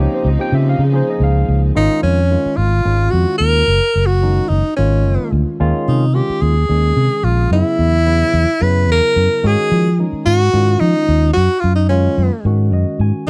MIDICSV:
0, 0, Header, 1, 6, 480
1, 0, Start_track
1, 0, Tempo, 548446
1, 1542, Time_signature, 7, 3, 24, 8
1, 11639, End_track
2, 0, Start_track
2, 0, Title_t, "Tenor saxophone"
2, 0, Program_c, 0, 66
2, 1543, Note_on_c, 0, 63, 97
2, 1765, Note_off_c, 0, 63, 0
2, 1775, Note_on_c, 0, 61, 81
2, 2242, Note_on_c, 0, 65, 90
2, 2255, Note_off_c, 0, 61, 0
2, 2716, Note_on_c, 0, 66, 85
2, 2729, Note_off_c, 0, 65, 0
2, 2951, Note_off_c, 0, 66, 0
2, 2957, Note_on_c, 0, 70, 106
2, 3554, Note_on_c, 0, 66, 85
2, 3567, Note_off_c, 0, 70, 0
2, 3920, Note_on_c, 0, 63, 81
2, 3933, Note_off_c, 0, 66, 0
2, 4165, Note_off_c, 0, 63, 0
2, 4170, Note_on_c, 0, 61, 75
2, 4679, Note_off_c, 0, 61, 0
2, 5147, Note_on_c, 0, 63, 72
2, 5379, Note_on_c, 0, 67, 85
2, 5392, Note_off_c, 0, 63, 0
2, 5614, Note_on_c, 0, 68, 96
2, 5627, Note_off_c, 0, 67, 0
2, 6335, Note_on_c, 0, 65, 80
2, 6348, Note_off_c, 0, 68, 0
2, 6577, Note_off_c, 0, 65, 0
2, 6586, Note_on_c, 0, 64, 114
2, 7545, Note_on_c, 0, 71, 94
2, 7558, Note_off_c, 0, 64, 0
2, 7782, Note_off_c, 0, 71, 0
2, 7803, Note_on_c, 0, 70, 105
2, 8283, Note_on_c, 0, 68, 98
2, 8296, Note_off_c, 0, 70, 0
2, 8751, Note_off_c, 0, 68, 0
2, 8977, Note_on_c, 0, 66, 111
2, 9451, Note_on_c, 0, 63, 97
2, 9465, Note_off_c, 0, 66, 0
2, 9911, Note_off_c, 0, 63, 0
2, 9916, Note_on_c, 0, 66, 104
2, 10148, Note_on_c, 0, 65, 88
2, 10161, Note_off_c, 0, 66, 0
2, 10280, Note_off_c, 0, 65, 0
2, 10285, Note_on_c, 0, 63, 71
2, 10398, Note_off_c, 0, 63, 0
2, 10403, Note_on_c, 0, 61, 74
2, 10916, Note_off_c, 0, 61, 0
2, 11639, End_track
3, 0, Start_track
3, 0, Title_t, "Tine electric piano"
3, 0, Program_c, 1, 4
3, 0, Note_on_c, 1, 53, 74
3, 0, Note_on_c, 1, 58, 71
3, 0, Note_on_c, 1, 63, 72
3, 0, Note_on_c, 1, 67, 87
3, 6, Note_on_c, 1, 73, 68
3, 112, Note_off_c, 1, 73, 0
3, 124, Note_on_c, 1, 72, 69
3, 231, Note_off_c, 1, 72, 0
3, 244, Note_off_c, 1, 53, 0
3, 246, Note_off_c, 1, 58, 0
3, 247, Note_off_c, 1, 63, 0
3, 247, Note_on_c, 1, 75, 81
3, 249, Note_off_c, 1, 67, 0
3, 336, Note_on_c, 1, 58, 62
3, 340, Note_on_c, 1, 53, 69
3, 343, Note_on_c, 1, 63, 58
3, 346, Note_on_c, 1, 67, 74
3, 352, Note_off_c, 1, 75, 0
3, 360, Note_on_c, 1, 79, 108
3, 469, Note_off_c, 1, 79, 0
3, 478, Note_on_c, 1, 76, 82
3, 587, Note_off_c, 1, 76, 0
3, 607, Note_on_c, 1, 77, 87
3, 685, Note_off_c, 1, 58, 0
3, 687, Note_off_c, 1, 53, 0
3, 688, Note_off_c, 1, 63, 0
3, 690, Note_off_c, 1, 67, 0
3, 712, Note_off_c, 1, 77, 0
3, 732, Note_on_c, 1, 68, 52
3, 806, Note_off_c, 1, 68, 0
3, 806, Note_on_c, 1, 53, 67
3, 811, Note_on_c, 1, 58, 64
3, 812, Note_on_c, 1, 63, 63
3, 817, Note_on_c, 1, 68, 74
3, 834, Note_on_c, 1, 72, 80
3, 945, Note_off_c, 1, 72, 0
3, 964, Note_on_c, 1, 75, 78
3, 1070, Note_off_c, 1, 75, 0
3, 1081, Note_on_c, 1, 77, 88
3, 1407, Note_off_c, 1, 77, 0
3, 1504, Note_off_c, 1, 53, 0
3, 1506, Note_off_c, 1, 58, 0
3, 1507, Note_off_c, 1, 63, 0
3, 1509, Note_off_c, 1, 68, 0
3, 1531, Note_on_c, 1, 51, 73
3, 1531, Note_on_c, 1, 56, 63
3, 1533, Note_on_c, 1, 61, 60
3, 1535, Note_on_c, 1, 65, 82
3, 1920, Note_off_c, 1, 51, 0
3, 1920, Note_off_c, 1, 56, 0
3, 1921, Note_off_c, 1, 61, 0
3, 1922, Note_off_c, 1, 65, 0
3, 2018, Note_on_c, 1, 51, 60
3, 2018, Note_on_c, 1, 56, 55
3, 2024, Note_on_c, 1, 61, 53
3, 2028, Note_on_c, 1, 65, 71
3, 2364, Note_off_c, 1, 51, 0
3, 2364, Note_off_c, 1, 56, 0
3, 2367, Note_off_c, 1, 61, 0
3, 2369, Note_off_c, 1, 65, 0
3, 2493, Note_on_c, 1, 56, 58
3, 2494, Note_on_c, 1, 51, 59
3, 2495, Note_on_c, 1, 61, 55
3, 2505, Note_on_c, 1, 65, 67
3, 3187, Note_off_c, 1, 51, 0
3, 3187, Note_off_c, 1, 56, 0
3, 3188, Note_off_c, 1, 61, 0
3, 3193, Note_off_c, 1, 65, 0
3, 3691, Note_on_c, 1, 51, 59
3, 3695, Note_on_c, 1, 56, 54
3, 3697, Note_on_c, 1, 61, 58
3, 3702, Note_on_c, 1, 63, 69
3, 4040, Note_off_c, 1, 51, 0
3, 4043, Note_off_c, 1, 56, 0
3, 4044, Note_off_c, 1, 61, 0
3, 4046, Note_off_c, 1, 63, 0
3, 4182, Note_on_c, 1, 51, 65
3, 4184, Note_on_c, 1, 56, 60
3, 4184, Note_on_c, 1, 61, 58
3, 4188, Note_on_c, 1, 65, 68
3, 4871, Note_off_c, 1, 51, 0
3, 4872, Note_off_c, 1, 56, 0
3, 4872, Note_off_c, 1, 61, 0
3, 4874, Note_off_c, 1, 65, 0
3, 4899, Note_on_c, 1, 51, 82
3, 4901, Note_on_c, 1, 61, 81
3, 4902, Note_on_c, 1, 56, 79
3, 4905, Note_on_c, 1, 65, 100
3, 5283, Note_off_c, 1, 51, 0
3, 5284, Note_off_c, 1, 61, 0
3, 5285, Note_off_c, 1, 56, 0
3, 5286, Note_off_c, 1, 65, 0
3, 5367, Note_on_c, 1, 51, 61
3, 5375, Note_on_c, 1, 56, 58
3, 5377, Note_on_c, 1, 65, 72
3, 5378, Note_on_c, 1, 61, 55
3, 5718, Note_off_c, 1, 51, 0
3, 5722, Note_off_c, 1, 56, 0
3, 5723, Note_off_c, 1, 61, 0
3, 5723, Note_off_c, 1, 65, 0
3, 5855, Note_on_c, 1, 51, 60
3, 5859, Note_on_c, 1, 56, 59
3, 5860, Note_on_c, 1, 61, 58
3, 5862, Note_on_c, 1, 68, 68
3, 6548, Note_off_c, 1, 51, 0
3, 6549, Note_off_c, 1, 56, 0
3, 6550, Note_off_c, 1, 61, 0
3, 6551, Note_off_c, 1, 68, 0
3, 6578, Note_on_c, 1, 49, 73
3, 6578, Note_on_c, 1, 54, 66
3, 6585, Note_on_c, 1, 59, 68
3, 6586, Note_on_c, 1, 64, 75
3, 6962, Note_off_c, 1, 49, 0
3, 6962, Note_off_c, 1, 54, 0
3, 6966, Note_off_c, 1, 59, 0
3, 6966, Note_off_c, 1, 64, 0
3, 7054, Note_on_c, 1, 49, 64
3, 7056, Note_on_c, 1, 59, 57
3, 7057, Note_on_c, 1, 54, 56
3, 7062, Note_on_c, 1, 64, 69
3, 7402, Note_off_c, 1, 49, 0
3, 7403, Note_off_c, 1, 54, 0
3, 7403, Note_off_c, 1, 59, 0
3, 7406, Note_off_c, 1, 64, 0
3, 7535, Note_on_c, 1, 49, 60
3, 7539, Note_on_c, 1, 54, 54
3, 7544, Note_on_c, 1, 59, 56
3, 7549, Note_on_c, 1, 64, 66
3, 8227, Note_off_c, 1, 49, 0
3, 8230, Note_off_c, 1, 54, 0
3, 8232, Note_off_c, 1, 59, 0
3, 8235, Note_off_c, 1, 64, 0
3, 8254, Note_on_c, 1, 51, 66
3, 8256, Note_on_c, 1, 56, 68
3, 8261, Note_on_c, 1, 61, 65
3, 8265, Note_on_c, 1, 66, 78
3, 8640, Note_off_c, 1, 51, 0
3, 8642, Note_off_c, 1, 56, 0
3, 8644, Note_off_c, 1, 61, 0
3, 8646, Note_off_c, 1, 66, 0
3, 8739, Note_on_c, 1, 51, 57
3, 8745, Note_on_c, 1, 56, 54
3, 8751, Note_on_c, 1, 61, 54
3, 8753, Note_on_c, 1, 63, 67
3, 9084, Note_off_c, 1, 51, 0
3, 9088, Note_off_c, 1, 56, 0
3, 9090, Note_off_c, 1, 61, 0
3, 9091, Note_off_c, 1, 63, 0
3, 9215, Note_on_c, 1, 51, 60
3, 9218, Note_on_c, 1, 56, 56
3, 9219, Note_on_c, 1, 65, 68
3, 9220, Note_on_c, 1, 61, 53
3, 9908, Note_off_c, 1, 51, 0
3, 9909, Note_off_c, 1, 56, 0
3, 9910, Note_off_c, 1, 61, 0
3, 9910, Note_off_c, 1, 65, 0
3, 10409, Note_on_c, 1, 51, 61
3, 10410, Note_on_c, 1, 56, 61
3, 10413, Note_on_c, 1, 61, 60
3, 10416, Note_on_c, 1, 65, 72
3, 10760, Note_off_c, 1, 51, 0
3, 10760, Note_off_c, 1, 56, 0
3, 10762, Note_off_c, 1, 61, 0
3, 10763, Note_off_c, 1, 65, 0
3, 10896, Note_on_c, 1, 51, 66
3, 10901, Note_on_c, 1, 61, 55
3, 10902, Note_on_c, 1, 56, 58
3, 10907, Note_on_c, 1, 66, 71
3, 11144, Note_on_c, 1, 75, 66
3, 11365, Note_off_c, 1, 75, 0
3, 11388, Note_on_c, 1, 80, 70
3, 11589, Note_off_c, 1, 51, 0
3, 11592, Note_off_c, 1, 56, 0
3, 11592, Note_off_c, 1, 61, 0
3, 11594, Note_off_c, 1, 66, 0
3, 11607, Note_off_c, 1, 80, 0
3, 11639, End_track
4, 0, Start_track
4, 0, Title_t, "String section"
4, 0, Program_c, 2, 48
4, 0, Note_on_c, 2, 49, 75
4, 0, Note_on_c, 2, 53, 62
4, 0, Note_on_c, 2, 60, 66
4, 0, Note_on_c, 2, 63, 75
4, 1528, Note_off_c, 2, 53, 0
4, 1528, Note_off_c, 2, 60, 0
4, 1532, Note_off_c, 2, 49, 0
4, 1533, Note_off_c, 2, 63, 0
4, 11639, End_track
5, 0, Start_track
5, 0, Title_t, "Fingered electric bass"
5, 0, Program_c, 3, 33
5, 216, Note_on_c, 3, 37, 92
5, 314, Note_off_c, 3, 37, 0
5, 459, Note_on_c, 3, 49, 92
5, 650, Note_off_c, 3, 49, 0
5, 689, Note_on_c, 3, 49, 93
5, 884, Note_off_c, 3, 49, 0
5, 1051, Note_on_c, 3, 37, 84
5, 1245, Note_off_c, 3, 37, 0
5, 1299, Note_on_c, 3, 37, 91
5, 1490, Note_off_c, 3, 37, 0
5, 1544, Note_on_c, 3, 32, 85
5, 1637, Note_off_c, 3, 32, 0
5, 1780, Note_on_c, 3, 41, 79
5, 2064, Note_off_c, 3, 41, 0
5, 2256, Note_on_c, 3, 32, 81
5, 2447, Note_off_c, 3, 32, 0
5, 2499, Note_on_c, 3, 32, 88
5, 2689, Note_off_c, 3, 32, 0
5, 2744, Note_on_c, 3, 41, 71
5, 2837, Note_off_c, 3, 41, 0
5, 2979, Note_on_c, 3, 39, 78
5, 3168, Note_off_c, 3, 39, 0
5, 3218, Note_on_c, 3, 30, 88
5, 3313, Note_off_c, 3, 30, 0
5, 3462, Note_on_c, 3, 30, 82
5, 3839, Note_off_c, 3, 30, 0
5, 3939, Note_on_c, 3, 30, 85
5, 4034, Note_off_c, 3, 30, 0
5, 4189, Note_on_c, 3, 32, 89
5, 4425, Note_off_c, 3, 32, 0
5, 4425, Note_on_c, 3, 30, 76
5, 4517, Note_off_c, 3, 30, 0
5, 4660, Note_on_c, 3, 38, 77
5, 4754, Note_off_c, 3, 38, 0
5, 4905, Note_on_c, 3, 39, 92
5, 4997, Note_off_c, 3, 39, 0
5, 5148, Note_on_c, 3, 48, 82
5, 5429, Note_off_c, 3, 48, 0
5, 5618, Note_on_c, 3, 39, 84
5, 5808, Note_off_c, 3, 39, 0
5, 5861, Note_on_c, 3, 39, 89
5, 6049, Note_off_c, 3, 39, 0
5, 6097, Note_on_c, 3, 48, 82
5, 6193, Note_off_c, 3, 48, 0
5, 6332, Note_on_c, 3, 34, 81
5, 6524, Note_off_c, 3, 34, 0
5, 6570, Note_on_c, 3, 42, 85
5, 6668, Note_off_c, 3, 42, 0
5, 6818, Note_on_c, 3, 40, 78
5, 7197, Note_off_c, 3, 40, 0
5, 7296, Note_on_c, 3, 40, 78
5, 7392, Note_off_c, 3, 40, 0
5, 7540, Note_on_c, 3, 42, 84
5, 7778, Note_off_c, 3, 42, 0
5, 7778, Note_on_c, 3, 40, 74
5, 7873, Note_off_c, 3, 40, 0
5, 8019, Note_on_c, 3, 42, 72
5, 8114, Note_off_c, 3, 42, 0
5, 8263, Note_on_c, 3, 44, 83
5, 8356, Note_off_c, 3, 44, 0
5, 8504, Note_on_c, 3, 53, 80
5, 8786, Note_off_c, 3, 53, 0
5, 8983, Note_on_c, 3, 44, 80
5, 9171, Note_off_c, 3, 44, 0
5, 9222, Note_on_c, 3, 44, 83
5, 9410, Note_off_c, 3, 44, 0
5, 9461, Note_on_c, 3, 53, 71
5, 9555, Note_off_c, 3, 53, 0
5, 9702, Note_on_c, 3, 39, 80
5, 9890, Note_off_c, 3, 39, 0
5, 9948, Note_on_c, 3, 42, 92
5, 10040, Note_off_c, 3, 42, 0
5, 10187, Note_on_c, 3, 42, 85
5, 10563, Note_off_c, 3, 42, 0
5, 10659, Note_on_c, 3, 42, 81
5, 10754, Note_off_c, 3, 42, 0
5, 10896, Note_on_c, 3, 44, 91
5, 11138, Note_off_c, 3, 44, 0
5, 11138, Note_on_c, 3, 42, 80
5, 11234, Note_off_c, 3, 42, 0
5, 11373, Note_on_c, 3, 44, 79
5, 11470, Note_off_c, 3, 44, 0
5, 11639, End_track
6, 0, Start_track
6, 0, Title_t, "Muted fingered electric bass strokes"
6, 2152, Note_on_c, 9, 29, 35
6, 2239, Note_off_c, 9, 29, 0
6, 5512, Note_on_c, 9, 29, 36
6, 5599, Note_off_c, 9, 29, 0
6, 8864, Note_on_c, 9, 29, 35
6, 8951, Note_off_c, 9, 29, 0
6, 11639, End_track
0, 0, End_of_file